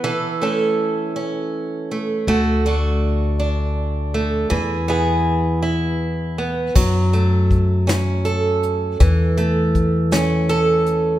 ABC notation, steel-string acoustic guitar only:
X:1
M:6/8
L:1/8
Q:3/8=54
K:A
V:1 name="Steel-string acoustic guitar"
[E,A] [A,CA]2 C2 A, | [A,F] [A,DF]2 D2 A, | [E,G] [B,EG]2 E2 B, | F, A,2 C A2 |
E, A,2 C A2 |]